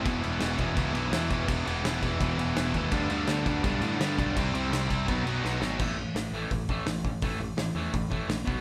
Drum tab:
CC |xxxxxxxx|xxxxxxxx|xxxxxxxx|xxxxxx--|
HH |--------|--------|--------|--------|
SD |--o---o-|--o---o-|--o---o-|--o---oo|
BD |o--oo--o|o--oo--o|o--oo--o|o--oo---|

CC |x-------|--------|
HH |--o-o-o-|o-o-o-o-|
SD |--o---o-|--o---o-|
BD |o---oo-o|o---oo-o|